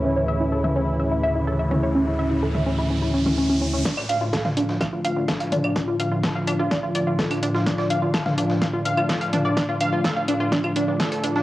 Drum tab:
HH |----------------|----------------|--x---x---x--xx-|--x---x---x--xx-|
TB |----------------|----------------|x-x-x-x-x-x-x-x-|x-x-x-x-x-x-x-x-|
CL |----------------|----------------|-x------x------x|------x------x--|
SD |----------------|----------------|oo--oo-oo---o---|o---o---o---o--o|
T2 |-----o--------o-|-----o-----o----|-----o--------o-|----------------|
BD |----------------|----------------|o---o---o---o---|o---o---o---o---|

HH |--x---x---x--xx-|--x---x---x--xx-|
TB |x-x-x-x-x-x-x-x-|x-x-x-x-x-x-x-x-|
CL |----x------x----|--x------x------|
SD |oo--oo-oo---o---|o---o---o---o--o|
T2 |-----o--------o-|----------------|
BD |o---o---o---o---|o---o---o---o---|